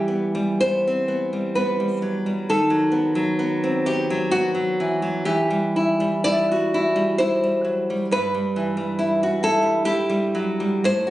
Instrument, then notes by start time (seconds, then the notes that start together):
nylon-string guitar
Already playing: E3 G3 G4
0.08 B3
0.35 G3
0.61 B3 C5
0.87 C4
1.08 B3
1.33 G3
1.55 B3 B4
1.80 G3
2.02 F#3
2.26 G3
2.49 D#3 A4
2.70 F#3
2.92 B3
3.15 F#3
3.39 B3
3.64 C4
3.86 B3 G4
4.10 F#3
4.31 B3 F#4
4.55 F#3
4.80 E3
5.02 F#3
5.25 E3 G4
5.50 G3
5.76 E4
6.00 G3
6.24 E4 D5
6.52 F#4
6.74 E4
6.96 G3
7.18 E4 C5
7.43 G3
7.64 F#3
7.90 G3
8.11 G2 B4
8.34 G3
8.56 E3
8.77 G3
8.99 E4
9.23 F#4
9.43 E4 A4
9.63 G3
9.85 E4 G4
10.10 G3
10.35 F#3
10.60 G3
10.84 A2 C5
11.07 F#4